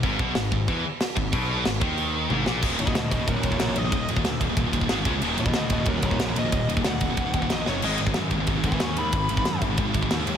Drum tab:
CC |x---x---x---x---|x---x---x-------|x---------------|----------------|
RD |----------------|----------------|--x-x-x-x-x-x-x-|x-x-x-x-x-x-x-x-|
SD |----o-------o---|----o---------o-|----o-------o---|----o-------o---|
T1 |----------------|------------o---|----------------|----------------|
BD |o-o---o-o-----o-|o-----o---------|o--o--o-o-oo----|o--o--o-o-oo--o-|

CC |----------------|----------------|x---------------|----------------|
RD |x-x-x-x-x-x-x-x-|x-x-x-x-x-x-x---|--x-x-x-x-x-x-x-|x-x-x-x-x-x-x-x-|
SD |----o-------o---|----o-------o-o-|----o-------o---|----o-------o---|
T1 |----------------|----------------|----------------|----------------|
BD |---o--o-o-oo----|o--o--o-o-oo----|---o--o-o-oo----|o--o--o-o-oo----|